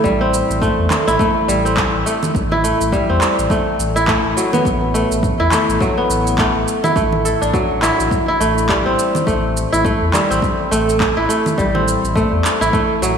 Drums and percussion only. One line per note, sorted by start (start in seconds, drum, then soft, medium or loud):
0.04 kick loud
0.04 shaker soft
0.34 shaker medium
0.51 shaker soft
0.62 kick loud
0.62 shaker soft
0.90 clap medium
0.90 low conga medium
0.90 shaker medium
1.08 shaker soft
1.19 kick loud
1.19 shaker soft
1.49 shaker medium
1.66 shaker soft
1.77 kick loud
1.77 clap medium
1.77 shaker soft
2.07 shaker medium
2.23 low conga medium
2.23 shaker soft
2.35 kick loud
2.35 shaker soft
2.51 low conga medium
2.65 shaker medium
2.81 shaker soft
2.92 kick loud
2.92 shaker soft
3.21 clap medium
3.21 shaker medium
3.39 shaker soft
3.50 kick loud
3.50 shaker soft
3.80 shaker medium
3.97 shaker soft
4.08 kick loud
4.08 clap medium
4.08 shaker soft
4.38 shaker medium
4.53 low conga medium
4.53 shaker soft
4.65 kick loud
4.65 shaker soft
4.95 shaker medium
5.12 shaker soft
5.23 kick loud
5.23 shaker soft
5.52 clap medium
5.52 low conga medium
5.52 shaker medium
5.70 shaker soft
5.81 kick loud
5.81 shaker soft
6.10 shaker medium
6.27 shaker soft
6.38 kick loud
6.38 clap medium
6.38 shaker soft
6.68 shaker medium
6.84 low conga medium
6.84 shaker soft
6.96 kick loud
6.96 shaker soft
7.12 low conga medium
7.25 shaker medium
7.42 shaker soft
7.54 kick loud
7.54 shaker soft
7.82 clap medium
7.82 shaker medium
8.00 shaker soft
8.11 kick loud
8.11 shaker soft
8.41 shaker medium
8.58 shaker soft
8.69 kick loud
8.69 clap medium
8.69 shaker soft
8.99 shaker medium
9.15 low conga medium
9.15 shaker soft
9.27 kick loud
9.27 shaker soft
9.57 shaker medium
9.74 shaker soft
9.85 kick loud
9.85 shaker soft
10.14 clap medium
10.14 low conga medium
10.14 shaker medium
10.31 shaker soft
10.42 kick loud
10.42 shaker soft
10.72 shaker medium
10.89 shaker soft
11.00 kick loud
11.00 clap medium
11.00 shaker soft
11.30 shaker medium
11.46 low conga medium
11.46 shaker soft
11.58 kick loud
11.58 shaker soft
11.75 low conga medium
11.88 shaker medium
12.05 shaker soft
12.16 kick medium
12.16 shaker soft
12.45 clap medium
12.45 shaker medium
12.62 shaker soft
12.73 kick loud
12.73 shaker soft
13.03 shaker medium